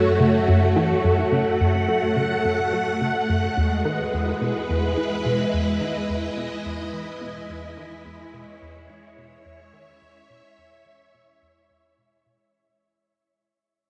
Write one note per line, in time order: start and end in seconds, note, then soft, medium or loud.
0.00 3.54 F#2 medium
0.00 3.56 A3 medium
0.00 4.65 F#4 medium
0.00 3.56 C#5 medium
0.00 0.64 E5 medium
0.20 0.39 C#3 medium
0.46 0.75 F#2 medium
0.46 5.68 F#5 medium
0.76 0.96 E3 loud
1.04 1.24 F#2 medium
1.32 1.44 C#3 medium
1.60 1.87 F#2 medium
1.88 2.00 F#3 medium
2.16 2.36 C#3 medium
2.44 2.71 F#2 medium
2.73 2.92 F#3 medium
3.01 3.12 C#3 medium
3.29 3.48 F#2 medium
3.57 12.51 E2 medium
3.57 3.83 E2 medium
3.57 12.54 G#3 medium
3.77 8.52 B4 medium
3.85 4.04 D#3 loud
4.01 12.54 E4 medium
4.13 4.32 E2 medium
4.41 4.52 B2 medium
4.69 4.95 E2 medium
4.97 5.09 E3 medium
5.03 9.26 D#5 medium
5.25 5.45 B2 medium
5.53 5.79 E2 medium
5.81 6.00 D#3 medium
6.09 6.29 E2 medium
6.37 6.49 B2 medium
6.65 6.92 E2 medium
6.93 7.05 E3 medium
7.21 7.41 B2 medium
7.49 7.76 E2 medium
7.77 7.97 D#3 medium
8.05 8.25 E2 medium
8.33 8.45 B2 medium
8.33 12.54 C#5 medium
8.61 8.88 E2 medium
8.89 9.01 E3 medium
9.09 12.54 E5 medium
9.17 9.37 B2 medium
9.45 9.72 E2 medium
9.73 9.93 D#3 medium
10.01 10.21 E2 medium
10.29 10.41 B2 medium
10.57 10.84 E2 medium
10.85 10.97 E3 medium
11.14 11.33 B2 medium
11.42 11.68 E2 medium
11.70 11.96 E2 medium
11.98 12.24 B2 medium
12.26 12.37 B2 medium